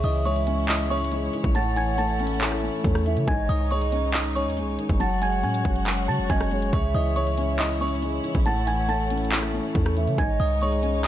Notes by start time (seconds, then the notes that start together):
Already playing: C#3 G#3 E4 C#5 E5
0.04 C#2 E3 D#5 D#6, closed hi-hat
0.25 G#3 C#5 C#6, closed hi-hat
0.36 closed hi-hat
0.47 C#4, closed hi-hat
0.69 E4 D#5 D#6, clap, closed hi-hat
0.90 C#4 C#5 C#6, closed hi-hat
0.97 closed hi-hat
1.04 closed hi-hat
1.12 G#3, closed hi-hat
1.33 E3, closed hi-hat
1.44 A1, kick
1.55 A2 A3 E4 F#5 A5 A6, closed hi-hat
1.76 E3 G#5 G#6, closed hi-hat
1.98 A3 A5 A6, closed hi-hat
2.20 C#4, closed hi-hat
2.27 closed hi-hat
2.34 closed hi-hat
2.41 E4, clap, closed hi-hat
2.52 cross-stick
2.63 C#4
2.84 E2 A3, kick, closed hi-hat
2.95 cross-stick
3.06 E3 E5, closed hi-hat
3.17 C#3, closed hi-hat
3.27 G#1 G#2 G#3 D#4 C#5 D#5 G#5 G#6, kick, closed hi-hat
3.49 C2 D#3 D#5 D#6, closed hi-hat
3.71 G#3 C#5 C#6, closed hi-hat
3.82 closed hi-hat
3.92 C#4, closed hi-hat
4.14 D#4 D#5 D#6, clap, closed hi-hat
4.35 C#4 C#5 C#6, closed hi-hat
4.43 D#2, closed hi-hat
4.50 closed hi-hat
4.57 G#3, closed hi-hat
4.62 C2
4.79 D#3, closed hi-hat
4.89 F#1, kick
5.00 F#3 G#3 F#4 F#5 A5 A6, closed hi-hat
5.21 G#3 G#5 G#6, closed hi-hat
5.43 A2 C#4 G#5 G#6, closed hi-hat
5.54 closed hi-hat
5.65 F#1 F#4, kick, closed hi-hat, open hi-hat
5.76 closed hi-hat
5.87 F#5, clap, closed hi-hat
6.08 C#3 F#4 A5 A6
6.19 F#1
6.30 F#1 C#4 D#5 G#5 G#6, kick, closed hi-hat
6.41 cross-stick
6.51 G#3 C#5, closed hi-hat
6.62 closed hi-hat
6.73 C#2 C#3 E4 C#5 E5 C#6, kick, closed hi-hat
6.94 C#2 E3 D#5 D#6, closed hi-hat
7.16 G#3 C#5 C#6, closed hi-hat
7.27 closed hi-hat
7.37 C#4, closed hi-hat
7.59 E4 D#5 D#6, clap, closed hi-hat
7.80 C#4 C#5 C#6, closed hi-hat
7.88 closed hi-hat
7.95 closed hi-hat
8.02 G#3, closed hi-hat
8.24 E3, closed hi-hat
8.35 A1, kick
8.46 A2 A3 F#5 A5 A6, closed hi-hat
8.67 E3 G#5 G#6, closed hi-hat
8.88 A3 A5 A6, closed hi-hat
9.10 C#4, closed hi-hat
9.18 closed hi-hat
9.25 closed hi-hat
9.32 E4, clap, closed hi-hat
9.43 cross-stick
9.54 C#4
9.74 E2 A3, kick, closed hi-hat
9.86 cross-stick
9.97 E3 E5, closed hi-hat
10.07 C#3, closed hi-hat
10.18 G#1 G#2 G#3 D#4 C#5 D#5 G#5 G#6, kick, closed hi-hat
10.40 C2 D#3 D#5 D#6, closed hi-hat
10.61 G#3 C#5 C#6, closed hi-hat
10.72 closed hi-hat
10.83 C#4, closed hi-hat